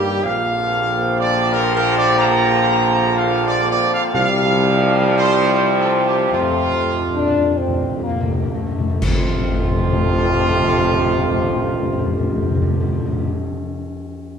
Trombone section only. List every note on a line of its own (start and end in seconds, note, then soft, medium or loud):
0.00 0.20 D#3 loud
0.00 0.20 G3 loud
0.23 4.10 D3 loud
0.23 4.10 F3 loud
4.13 8.53 C3 loud
4.13 8.49 F3 loud
9.03 13.30 C3 loud
9.03 13.30 F3 loud